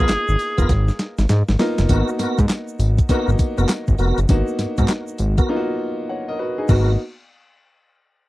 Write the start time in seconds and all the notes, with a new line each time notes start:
Already playing: A#3 B3 D#4 F4 G#4
0.00 A#4
0.09 G#1, snare, clap, closed hi-hat, tambourine, shaker
0.28 G#1, shaker
0.39 open hi-hat, tambourine, shaker
0.58 F1 B3 F4 A#4, kick, closed hi-hat, shaker
0.69 G#1, kick, snare, closed hi-hat, shaker
0.88 snare, shaker
0.99 snare, closed hi-hat
1.18 G#1, snare, closed hi-hat, shaker
1.29 G#2, snare, closed hi-hat, shaker
1.48 G#1, snare, shaker
1.59 A#3 B3 D#4 F4, snare, open hi-hat, shaker
1.78 F#1, snare, closed hi-hat, shaker
1.89 G#1 A#3 B3 D#4 F#4 A#4, kick, closed hi-hat, tambourine, shaker
2.08 shaker
2.19 G#2 B3 F#4 A#4, snare, closed hi-hat, tambourine
2.38 G#2, kick, closed hi-hat, shaker
2.49 snare, clap, closed hi-hat, tambourine, shaker
2.68 shaker
2.79 G#1, closed hi-hat, tambourine, shaker
2.98 kick, closed hi-hat, shaker
3.09 A#3 B3 D#4 F#4 A#4, kick, closed hi-hat, tambourine, shaker
3.28 G#1, shaker
3.39 kick, closed hi-hat, tambourine, shaker
3.58 F#1 B3 F#4 A#4, closed hi-hat, shaker
3.69 snare, clap, closed hi-hat, tambourine, shaker
3.87 G#1, kick, shaker
3.98 F1 B3 F#4 A#4, open hi-hat, shaker
4.18 F#1, closed hi-hat, shaker
4.28 G#1 A#3 B3 D#4 F#4, kick, closed hi-hat, tambourine, shaker
4.48 shaker
4.59 G#2, snare, closed hi-hat, tambourine
4.78 G#2 B3 F#4 A#4, kick, closed hi-hat, shaker
4.88 snare, clap, closed hi-hat, tambourine, shaker
5.07 shaker
5.18 G#1, closed hi-hat, tambourine, shaker
5.37 B3 F#4 A#4, kick, closed hi-hat, shaker
5.49 A#3 B3 D#4 F4
5.56 F#4
6.09 C#5 F#5
6.28 A#4 D#5
6.39 F#4 B4
6.58 D#4 G#4
6.68 G#1 A#3 B3 D#4 F#4 A#4, kick, crash, shaker